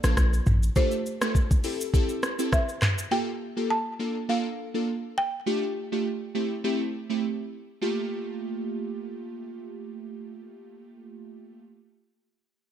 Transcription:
Already playing: marimba D5
0.04 808-style bass A1, synth keys A#3 D4 F4 A4, cross-stick, shaker
0.17 808-style bass A#1, kick, cross-stick, shaker
0.34 shaker
0.46 808-style bass A1, mid tom, shaker
0.63 shaker
0.76 synth keys A3 D4 F4 G4 A4, marimba C5, kick, shaker
0.91 shaker
1.06 shaker
1.21 synth keys A3 D4 F4 G4 A4, cross-stick, shaker
1.35 kick, shaker
1.51 kick, shaker
1.64 synth keys C4 E4 G4 A4, open hi-hat, shaker
1.81 shaker
1.93 synth keys C4 E4 G4 A4, kick, shaker
2.09 shaker
2.23 cross-stick, shaker
2.39 synth keys C4 E4 G4 A4, shaker
2.53 marimba E5, kick, cross-stick, shaker
2.69 shaker
2.82 cross-stick, clap, mid tom, shaker
2.98 shaker
3.11 synth keys A#3 F4 G4 A4, marimba G5
3.57 synth keys A#3 F4 G4 A4
3.70 marimba A5
3.99 synth keys A#3 D4 F4 A4
4.29 synth keys A#3 D4 F4 A4, marimba F5
4.74 synth keys A#3 D4 F4 A4
5.18 marimba G5
5.46 synth keys A3 D4 F4 G4
5.92 synth keys A3 D4 F4 G4
6.35 synth keys A3 C4 E4 G4
6.64 synth keys A3 C4 E4 G4
7.10 synth keys A3 C4 E4 G4
7.81 synth keys A3 A#3 F4 G4

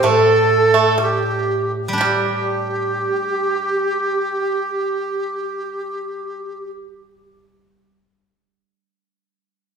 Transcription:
0.03 guzheng A2, pipa A3, xiao C5
0.07 dizi A4, xiao A4
0.74 pipa A3, xiao A4
0.98 pipa G3, xiao G4
1.02 dizi G4
1.88 guzheng G3
1.93 guzheng D4
1.98 pipa G3, guzheng G4, xiao G4, dizi G4

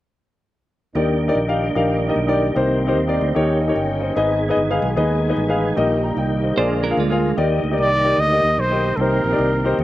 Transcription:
0.95 fingered electric bass D#2, french horn section D#3 G3 A#3 D4, tonewheel organ D#3 A#3 D4 G4, grand piano D#3 D#4 G4 A#4 D5
1.28 grand piano D#4 G4 A#4 D5
1.35 fingered electric bass A#1
1.47 grand piano D#4 G4 A#4 F5
1.75 fingered electric bass A#1, grand piano D#4 G4 A#4 F5
2.08 grand piano D#4 G4 A#4 D#5
2.16 fingered electric bass B1
2.27 grand piano D#4 G4 A#4 D5
2.55 fingered electric bass C2, grand piano C3 D#4 G4 A#4 C5, french horn section D#3 A#3 C4, tonewheel organ C4
2.87 grand piano D#4 G4 A#4 C5
2.96 fingered electric bass D#2
3.08 grand piano D#4 G4 A#4 D5
3.21 fingered electric bass D2
3.35 fingered electric bass D#2, grand piano D#3 D#4 G4 A#4 C#5, french horn section A#3 C#4, tonewheel organ C#4
3.61 grand piano D#5
3.68 grand piano D#4 G4 A#4 C#5
3.75 fingered electric bass G1, grand piano D#5 G5
4.01 grand piano C5 D#5
4.16 fingered electric bass G#1, grand piano G#2 D#4 G#4 B4 D#5, tonewheel organ G#3 B3 G#4, french horn section G#3 B3 D#4
4.49 grand piano D#4 G#4 B4 D#5
4.57 fingered electric bass G1
4.69 grand piano D#4 G#4 B4 F5
4.82 fingered electric bass B1
4.96 fingered electric bass D#2, grand piano D#4 G#4 B4 D#5
5.29 grand piano D#4 G#4 B4 D#5
5.36 fingered electric bass A1
5.48 grand piano D#4 G#4 B4 F5
5.76 fingered electric bass A#1, grand piano A#2 D#4 G4 A#4 D#5, tonewheel organ G3 A#3 G4, french horn section G3 A#3
6.03 grand piano G5 A#5
6.17 fingered electric bass C2, grand piano D#5 G5
6.43 grand piano C5 D#5
6.56 fingered electric bass A#1, grand piano A#2 F4 G#4 A#4 D5, tonewheel organ D3 G#3 F4, french horn section F3 G#3 D4, clean electric guitar C5
6.84 clean electric guitar D4 A#4
6.89 grand piano F4 G#4 A#4 F5
6.97 fingered electric bass D2, clean electric guitar G#3 F4
7.10 grand piano F4 G#4 A#4 F5
7.37 fingered electric bass D#2, tonewheel organ D#3 A#3 D#4 G4, grand piano D#3 D#4 G4 A#4 D5
7.63 fingered electric bass D2
7.71 grand piano D#4 G4 A#4 D5
7.79 fingered electric bass C2, trumpet D5
8.04 grand piano D#4 G4 A#4 D5
8.18 fingered electric bass D2, trumpet D#5
8.31 grand piano D#4 G4 A#4 D#5
8.43 fingered electric bass D#2
8.58 fingered electric bass B1, trumpet C5
8.71 grand piano D#4 G4 A#4 C5
8.96 fingered electric bass C2, tonewheel organ A#3 C4 G4, grand piano D#4 G4, trumpet A4
9.00 grand piano C3 A#4 C5, trumpet A#4
9.24 fingered electric bass A#1
9.32 grand piano D#4 G4 A#4 D5
9.39 fingered electric bass C2
9.64 grand piano D#4 G4 A#4 C5
9.78 fingered electric bass D#2, grand piano D#3, tonewheel organ C#4 G4

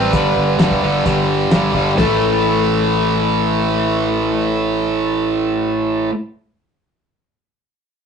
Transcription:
Already playing: overdriven electric guitar C3 G3 C4, electric slide guitar B4
0.13 fingered electric bass G1, overdriven electric guitar G2 D3 G3, kick, closed hi-hat
0.37 fingered electric bass G1
0.59 fingered electric bass G1, overdriven electric guitar G2 D3 G3, snare, closed hi-hat
0.71 kick
0.83 fingered electric bass G1, overdriven electric guitar G2 D3 G3
1.06 fingered electric bass G1, overdriven electric guitar G2 D3 G3, kick, closed hi-hat
1.51 fingered electric bass G1, overdriven electric guitar G2 D3 G3, snare, closed hi-hat
1.74 fingered electric bass G1, overdriven electric guitar G2 D3 G3, kick
1.95 fingered electric bass A1, overdriven electric guitar A2 E3, electric slide guitar A4, snare, floor tom, splash
1.99 overdriven electric guitar A3

